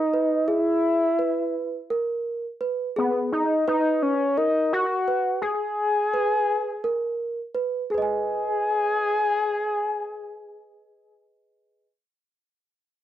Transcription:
Already playing: D#4
0.14 B4
0.47 E4 G#4
1.19 B4
1.90 A#4
2.61 B4
2.96 B3 G#4
3.32 D#4
3.68 D#4 B4
4.02 C#4
4.37 D#4 A#4
4.73 F#4
5.08 B4
5.42 G#4
6.14 B4
6.84 A#4
7.55 B4
7.90 G#4
7.94 B4 D#5
8.02 G#5

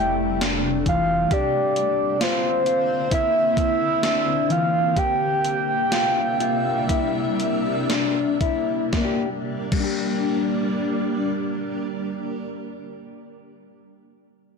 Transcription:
Already playing: F1 C3 G3 A3 E4 G5
0.41 D4, snare, closed hi-hat
0.86 E3 F5, kick, closed hi-hat
1.31 D3 A#3 C4 G4 D5, kick, closed hi-hat
1.76 closed hi-hat
2.21 F4 C5, snare, closed hi-hat
2.66 F4, closed hi-hat
3.11 E4 E5, kick, closed hi-hat
3.57 kick, closed hi-hat
4.03 D4, snare, closed hi-hat
4.49 E3 F5, closed hi-hat
4.96 C3 G3 D4 G4 E5 G5, kick, closed hi-hat
5.45 closed hi-hat
5.92 F4, snare, closed hi-hat
6.40 F4, closed hi-hat
6.89 E4, kick, closed hi-hat
7.40 closed hi-hat
7.89 D4, snare, closed hi-hat
8.41 E4, kick, closed hi-hat
8.93 G3 A#3 D4, kick, snare
8.97 A#3 D4
9.05 G4
9.72 G3, kick, crash
9.76 A#3 D4
9.84 G4

